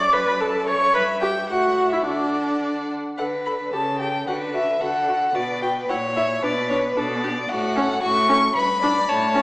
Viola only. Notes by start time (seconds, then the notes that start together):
Already playing: D5
0.13 B4
0.41 A4
0.68 C#5
0.95 B4
1.22 G4
1.50 F#4
1.93 E4
2.07 D4
3.19 A4
3.46 A4
3.73 G4
4.00 G4
4.28 F#4
4.54 F#4
4.81 F#4
5.08 F#4
5.34 F#4
5.62 F#4
5.89 E4
6.16 E4
6.43 D4
6.70 D4
6.96 D4
7.23 D4
7.76 C#4
8.28 C#4
8.82 D4
9.34 C#4